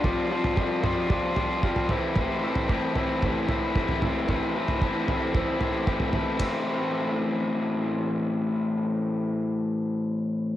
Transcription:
<<
  \new Staff \with { instrumentName = "Overdriven electric guitar" } { \time 4/4 \key a \minor \tempo 4 = 113 <f g c' f'>8 <f g c' f'>8 <f g c' f'>8 <f g c' f'>8 <f g c' f'>8 <f g c' f'>8 <f g c' f'>8 <a, e a c' e'>8 | <a, e a c' e'>8 <a, e a c' e'>8 <a, e a c' e'>8 <a, e a c' e'>8 <a, e a c' e'>8 <a, e a c' e'>8 <a, e a c' e'>8 <a, e a c' e'>8 | <a, e a c' e'>8 <a, e a c' e'>8 <a, e a c' e'>8 <a, e a c' e'>8 <a, e a c' e'>8 <a, e a c' e'>8 <a, e a c' e'>8 <a, e a c' e'>8 | <a, e a c' e'>1~ |
<a, e a c' e'>1 | }
  \new DrumStaff \with { instrumentName = "Drums" } \drummode { \time 4/4 <bd tomfh>8. tomfh16 bd8 <tomfh toml>8 <bd tomfh>8 tomfh8 bd16 tomfh16 tomfh8 | <bd tomfh>8. tomfh16 bd8 tomfh8 <bd tomfh>8 tomfh8 bd16 tomfh16 tomfh8 | <bd tomfh>8. tomfh16 bd8 tomfh8 <bd tomfh>8 tomfh8 bd16 tomfh16 tomfh8 | <bd cymr>4 r4 r4 r4 |
r4 r4 r4 r4 | }
>>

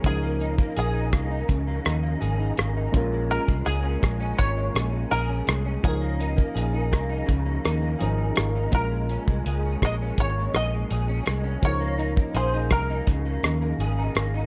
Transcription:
<<
  \new Staff \with { instrumentName = "Five-string banjo" } { \time 4/4 \key des \major \tempo 4 = 83 aes'4 aes'4. r4. | r8 bes'8 aes'4 des''4 bes'4 | aes'2 r2 | bes'4 r8 ees''8 des''8 ees''4. |
des''4 c''8 bes'2 r8 | }
  \new Staff \with { instrumentName = "Clean electric guitar" } { \time 4/4 \key des \major r16 bes16 ees'16 bes16 aes'16 ees'16 bes16 ees'16 des16 bes16 ees'16 bes16 aes'16 ees'16 bes16 ees'16 | bes,16 aes16 des'16 aes16 aes'16 des'16 aes16 des'16 bes,16 aes16 des'16 aes16 aes'16 des'16 aes16 des'16 | r16 bes16 ees'16 bes16 aes'16 ees'16 bes16 ees'16 des16 bes16 ees'16 bes16 aes'16 ees'16 bes16 ees'16 | bes,16 aes16 des'16 aes16 aes'16 des'16 aes16 des'16 bes,16 aes16 des'16 aes16 aes'16 des'16 aes16 des'16 |
r16 bes16 ees'16 bes16 aes'16 ees'16 bes16 ees'16 des16 bes16 ees'16 bes16 aes'16 ees'16 bes16 ees'16 | }
  \new Staff \with { instrumentName = "Synth keys" } { \time 4/4 \key des \major <ees f des' ees' bes'>1 | <aes des' f' bes'>1 | <f des' ees' bes'>2. <f des' ees' bes'>4 | <aes des' f' bes'>1 |
<f des' ees' bes'>1 | }
  \new Staff \with { instrumentName = "Fingered electric bass" } { \clef bass \time 4/4 \key des \major des,4 bes,,8 c,8 des,8 ees,8 aes,,8 aes,,8 | bes,,8. c,16 des,8 bes,,8 aes,,8 bes,,8 bes,,8 c,8 | des,4 bes,,8 c,8 des,8 ees,8 aes,,8 aes,,8 | bes,,8. c,16 des,8 bes,,8 aes,,8 bes,,8 bes,,8 c,8 |
des,4 bes,,8 c,8 des,8 ees,8 aes,,8 aes,,8 | }
  \new DrumStaff \with { instrumentName = "Drums" } \drummode { \time 4/4 <hh bd>8 hh16 bd16 hh8 <hh bd ss>8 <hh bd>8 <hh ss>8 hh8 <hh ss>8 | <hh bd>8 hh16 bd16 hh8 <hh bd ss>8 <hh bd>8 <hh ss>8 hh8 <hh ss>8 | <hh bd>8 hh16 bd16 hh8 <hh bd ss>8 <hh bd>8 <hh ss>8 hh8 <hh ss>8 | <hh bd>8 hh16 bd16 hh8 <hh bd ss>8 <hh bd>8 <hh ss>8 hh8 <hh ss>8 |
<hh bd>8 hh16 bd16 hh8 <hh bd ss>8 <hh bd>8 <hh ss>8 hh8 <hh ss>8 | }
>>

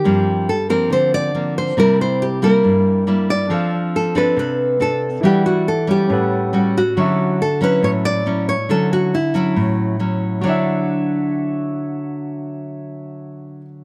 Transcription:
<<
  \new Staff \with { instrumentName = "Grand piano" } { \time 4/4 \key d \major \tempo 4 = 139 r1 | r1 | <c' d' a' f''>1 | <e' d'' fis''>2 <cis' a' b' fis''>2 |
<fis' e'' cis'''>1~ | <fis' e'' cis'''>1 | <fis' cis'' e''>1~ | <fis' cis'' e''>1 | }
  \new Staff \with { instrumentName = "Nylon-string guitar" } { \time 4/4 \key d \major g'4 a'8 bes'8 c''8 d''4 c''8 | bes'8 c''8 g'8 bes'2 d''8~ | d''8 r8 a'8 b'8 b'4 a'4 | g'8 fis'8 a'8 g'2 fis'8~ |
fis'4 a'8 b'8 cis''8 d''4 cis''8 | a'8 fis'8 e'8 e'2 r8 | d'1~ | d'1 | }
  \new Staff \with { instrumentName = "Nylon-string guitar" } { \time 4/4 \key d \major << { <f bes c'>4 r8 <f bes c'>4. <f bes c'>4 | <g bes e'>4. <g bes e'>4. <g bes e'>4 | <c' d' a'>4 r8 <c' d' a'>4. <c' d' a'>8 r8 | <g d' fis'>4 r8 <g cis'>4. <g cis' fis'>8 r8 |
<fis cis' e'>4 r8 <fis cis' e'>4. <fis cis' e'>8 r8 | <fis cis' e'>4 r8 <fis cis' e'>4. <fis cis' e'>4 | <d fis e'>1~ | <d fis e'>1 | } \\ { g,2 d2 | c2 g,2 | f2 c2 | e2 a,2 |
d2 a,2 | d2 a,2 | r1 | r1 | } >> }
>>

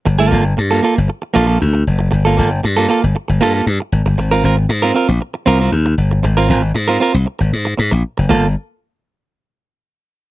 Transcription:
<<
  \new Staff \with { instrumentName = "Clean electric guitar" } { \time 4/4 \key g \phrygian \tempo 4 = 116 r16 <bes f' a'>16 <bes f' a'>16 r8 <bes f' a'>16 <bes f' a'>16 r8. <bes f' a'>16 <bes f' a'>16 r4 | r16 <bes f' a'>16 <bes f' a'>16 r8 <bes f' a'>16 <bes f' a'>16 r8. <bes f' a'>16 <bes f' a'>16 r4 | r16 <c' f' bes'>16 <c' f' bes'>16 r8 <c' f' bes'>16 <c' f' bes'>16 r8. <c' f' bes'>16 <c' f' bes'>16 r4 | r16 <c' f' bes'>16 <c' f' bes'>16 r8 <c' f' bes'>16 <c' f' bes'>16 r2 r16 |
<bes f' a'>16 r2. r8. | }
  \new Staff \with { instrumentName = "Slap bass" } { \clef bass \time 4/4 \key g \phrygian g,,8 g,,8 g,8 r16 g,,16 r8 bes,,8 d,8 fis,,8 | g,,8 g,,8 g,8 r16 g,,16 r16 g,,16 g,8 g,16 r16 aes,,16 g,,16 | aes,,8 aes,,8 aes,8 r16 bes,,16 r8 c,8 ees,8 g,,8 | aes,,8 aes,,8 aes,8 r16 c,16 r16 aes,,16 aes,8 aes,16 bes,,16 r16 fis,,16 |
g,,8 r2. r8 | }
>>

